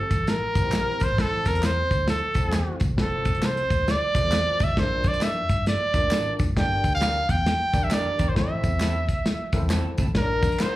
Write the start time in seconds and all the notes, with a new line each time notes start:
Already playing: A4
0.11 A1, kick, closed hi-hat, tambourine, high conga
0.27 A#4, snare, closed hi-hat, tambourine, muted conga, high conga
0.55 G1 C4 E4 G4 B4, kick, closed hi-hat, tambourine, high conga
0.62 A#1 C5
0.72 snare, clap, closed hi-hat, tambourine
0.87 low conga
1.00 A1 C5, kick, closed hi-hat, tambourine
1.09 G#1, high conga
1.18 A1 C4 E4 A4 C5, kick, snare, closed hi-hat, tambourine, muted conga, low conga
1.33 muted conga
1.45 E2 A#4, kick, closed hi-hat, tambourine, high conga
1.55 closed hi-hat
1.63 C5, snare, clap, closed hi-hat, tambourine
1.91 D2, kick, closed hi-hat, tambourine, high conga
2.08 A4, snare, closed hi-hat, tambourine, muted conga, high conga
2.34 C2 C4 E4 A4 C5, kick, closed hi-hat, tambourine, high conga
2.45 E2
2.52 snare, clap, closed hi-hat, tambourine
2.67 low conga
2.80 D2, kick, closed hi-hat, tambourine
2.89 E1, high conga
2.97 F1 C4 F4 A4 B4, kick, snare, closed hi-hat, tambourine, muted conga, low conga
3.04 C5
3.25 C2, kick, closed hi-hat, tambourine, high conga
3.35 closed hi-hat
3.42 C5, snare, clap, closed hi-hat, tambourine
3.56 closed hi-hat, muted conga
3.70 D2, kick, closed hi-hat, tambourine, high conga
3.88 D5, snare, closed hi-hat, tambourine, muted conga, high conga
4.15 C2 C4 F4 G4 C5, kick, closed hi-hat, tambourine, high conga
4.21 E2 A4
4.32 snare, clap, closed hi-hat, tambourine
4.46 muted conga, low conga
4.60 D2, kick, closed hi-hat, tambourine
4.64 E5
4.68 A1, high conga
4.77 A#1 D4 F4 A#4 C5 D5, kick, snare, closed hi-hat, low conga
5.03 F2, kick, closed hi-hat, tambourine, high conga
5.08 D5
5.13 closed hi-hat
5.21 E5, snare, clap, closed hi-hat, tambourine
5.35 muted conga
5.49 G2, kick, closed hi-hat, tambourine, high conga
5.66 D5, snare, closed hi-hat, tambourine, muted conga, high conga
5.94 F2 D4 F4 A#4 D5, kick, closed hi-hat, tambourine, high conga
6.03 A2
6.11 snare, clap, closed hi-hat, tambourine
6.26 low conga
6.39 G2, kick, closed hi-hat, tambourine
6.47 F#1, high conga
6.56 G1 D4 G4 A4 D5 G5, kick, snare, closed hi-hat, muted conga, low conga
6.62 A#4
6.71 muted conga
6.83 D2, kick, closed hi-hat, tambourine, high conga
6.95 F5
7.01 D4 G4 A#4, snare, clap, closed hi-hat, tambourine
7.29 E2 G5, kick, closed hi-hat, tambourine, high conga
7.46 snare, closed hi-hat, tambourine, muted conga, high conga
7.73 D2 D4 G4 A#4 D5, kick, closed hi-hat, tambourine, high conga
7.82 F2 E5
7.91 D4 G4 A#4 D5, snare, clap, closed hi-hat, tambourine
8.05 low conga
8.19 E2 D4 G4 A#4, kick, closed hi-hat, tambourine
8.27 G#1 C5, high conga
8.35 A1 C4 E4 A4 C5 E5, kick, snare, closed hi-hat, muted conga, low conga
8.50 muted conga
8.62 E2, kick, closed hi-hat, tambourine, high conga
8.80 C4 E4 A4, snare, clap, closed hi-hat, tambourine
9.07 D2, kick, closed hi-hat, high conga
9.25 snare, closed hi-hat, tambourine, high conga
9.38 muted conga
9.53 C2 C4 E4 A4 A#4, kick, closed hi-hat, tambourine, high conga
9.59 E2 C5
9.70 C4 E4 A4, snare, clap, closed hi-hat, tambourine
9.84 muted conga, low conga
9.98 D2 C4 E4 A4, kick, closed hi-hat, tambourine
10.06 A1, high conga
10.15 A#1 D4 F4 A#4 C#5, kick, snare, closed hi-hat, tambourine, muted conga, low conga
10.21 D5
10.30 muted conga
10.42 F2, kick, closed hi-hat, tambourine, high conga
10.52 closed hi-hat
10.59 D4 F4 A#4 C5, snare, clap, closed hi-hat, tambourine